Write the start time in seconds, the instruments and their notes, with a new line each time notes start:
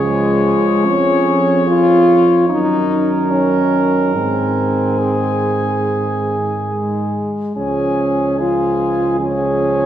Already playing: tuba C#2, trumpet G#4 C#5
0.00 trombone F3, french horn G#3
0.84 tuba F2, french horn C#4
1.67 french horn F4
2.48 tuba F#2, trombone D#3, french horn D#4, trumpet A#4
3.31 french horn C#4
4.14 tuba G#2, french horn C4, trumpet G#5
4.98 trumpet G#4
6.68 french horn G#3
7.56 tuba C#2, trombone F3, french horn C#4, trumpet G#4 G#5
8.39 trombone F3, french horn F4, trumpet G#4 G#5
9.19 trombone F3, french horn C#4, trumpet G#4 G#5